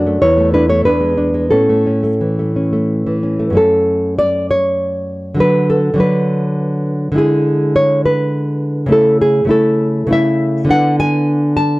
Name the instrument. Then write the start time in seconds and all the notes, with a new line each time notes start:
nylon-string guitar
Already playing: F#2 D4 F#4 D5
0.07 A3
0.22 E2 E4 C#5
0.38 A3
0.54 D4 E4 B4
0.69 A3 E4 C#5
0.85 E2 D4 B4
1.01 G#3
1.18 D4
1.34 G#3
1.51 A2 C#4 A4
1.69 A3
1.86 C#4
2.03 A3
2.21 E3
2.39 A3
2.56 C#4
2.73 A3
3.07 E3
3.23 C#4
3.39 A3
3.50 F#2 A3
3.55 C#4 A4
4.19 D5
4.51 C#5
5.35 D3 F#3
5.39 D4 B4
5.70 A4
5.94 D3 F#3
5.98 D4 B4
7.12 D3 G#3
7.16 E4 G#4
7.76 C#5
8.05 B4
8.86 C#3 A3
8.91 E4 A4
9.21 G#4
9.45 C#3 A3
9.49 E4 A4
10.07 C#3 A3
10.11 E4 E5
10.65 D3 B3
10.69 D4 F#5
11.00 G#5
11.57 A5